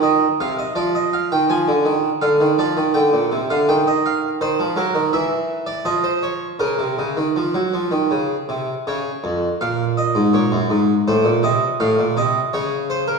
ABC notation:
X:1
M:3/4
L:1/16
Q:1/4=82
K:Cphr
V:1 name="Harpsichord"
e2 f e =d e f g a4 | f2 =d2 g3 f g e f2 | [K:Bbm] c2 B2 =e3 =d _e c _d2 | B8- B2 z2 |
d4 f2 e2 d4 | c2 e2 f2 e2 d2 c B |]
V:2 name="Harpsichord" clef=bass
E,2 C,2 F,3 E, F, =D, E,2 | =D, E, F, E, D, B,, C, D, E,4 | [K:Bbm] E, F, G, E, =E,4 F,4 | D, C, D, E, F, G, F, E, D,2 C,2 |
D,2 F,,2 B,,3 A,, B,, G,, A,,2 | =A,, B,, C,2 A,, B,, C,2 D,4 |]